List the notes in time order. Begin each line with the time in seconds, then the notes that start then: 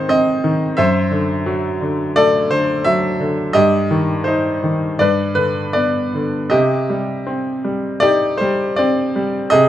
Already playing: G#2 D#3 C4 D#4 C5
0.09 C4 D#5
0.44 D#3
0.77 F#2 C5 E5
1.11 D3
1.46 F#3
1.81 D3
2.16 A3 A4 D5
2.51 D3 C5
2.85 F#3 E5
3.20 D3
3.53 G2 G4 D#5
3.91 D#3
4.24 D#4 C5
4.64 D#3
4.99 G2 B4 D5
5.35 D3 B4
5.73 B3 D5
6.14 D3
6.50 C3 G4 D#5
6.90 G3
7.27 C4
7.65 G3
8.00 D#4 G4 D5
8.37 G3 C5
8.76 C4 D5
9.16 G3
9.50 C3 G#4 D#5